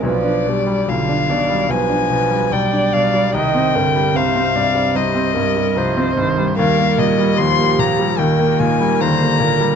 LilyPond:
<<
  \new Staff \with { instrumentName = "Violin" } { \time 4/4 \key c \minor \tempo 4 = 74 d''4 f''4 aes''4 g''8 f''8 | g''4 f''4 ees''4. r8 | f''8 ees''8 c'''8 bes''8 g''8 aes''8 bes''4 | }
  \new Staff \with { instrumentName = "Viola" } { \time 4/4 \key c \minor b'8 g'8 f'8 d''8 b'8 b'8 d''4 | ees''8 bes'8 c''8 d''8 c''8 bes'8 c''4 | bes'4 g'4 bes'4 c''8 bes'8 | }
  \new Staff \with { instrumentName = "Cello" } { \clef bass \time 4/4 \key c \minor f8 g8 d8 ees8 f4 g4 | ees8 d8 c4 g4 f8 ees8 | g4 f4 ees4 d4 | }
  \new Staff \with { instrumentName = "Grand piano" } { \clef bass \time 4/4 \key c \minor b,,16 d'16 b,16 g16 b,,16 d'16 b,16 g16 b,,16 d'16 b,16 g16 b,,16 d'16 b,16 g16 | c,16 c'16 g,16 g16 c,16 c'16 g,16 g16 c,16 c'16 g,16 g16 c,16 c'16 g,16 g16 | ees,16 bes16 bes,16 g16 ees,16 bes16 bes,16 g16 ees,16 bes16 bes,16 g16 ees,16 bes16 bes,16 g16 | }
>>